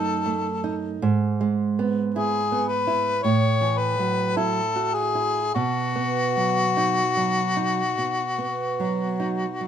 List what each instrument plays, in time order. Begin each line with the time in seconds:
Already playing: nylon-string guitar F#2 D#4, harmonica A4
0.26 nylon-string guitar A3
0.64 nylon-string guitar D#4
1.02 nylon-string guitar G#2
1.41 nylon-string guitar G#3
1.79 nylon-string guitar B3
2.14 nylon-string guitar E4, harmonica G#4
2.52 nylon-string guitar B3
2.68 harmonica B4
2.87 nylon-string guitar E4
3.22 nylon-string guitar A2, harmonica C#5
3.61 nylon-string guitar E3
3.78 harmonica B4
3.99 nylon-string guitar F#3
4.36 nylon-string guitar E4, harmonica A4
4.76 nylon-string guitar F#4
4.94 harmonica G#4
5.15 nylon-string guitar E4
5.54 nylon-string guitar B2, harmonica F#4
5.96 nylon-string guitar B3
6.37 nylon-string guitar F#3
6.77 nylon-string guitar D#4
7.17 nylon-string guitar F#3
7.57 nylon-string guitar D#4
7.98 nylon-string guitar B2
8.38 nylon-string guitar B3
8.80 nylon-string guitar F#3
9.20 nylon-string guitar D#4
9.61 nylon-string guitar F#3